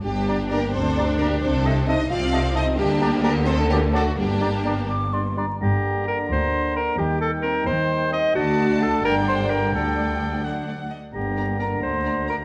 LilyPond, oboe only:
\new Staff \with { instrumentName = "Oboe" } { \time 6/8 \key g \minor \tempo 4. = 87 r8 d''8 d''8 r8 d''8 d''8 | r8 ees''8 ees''8 r8 ees''8 ees''8 | r8 d''8 d''8 r8 d''8 d''8 | r8 d''8 d''8 r8 d''8 d''8 |
bes''2. | g''2. | a''4. g''4.~ | g''4. fis''4 r8 |
bes''2. | }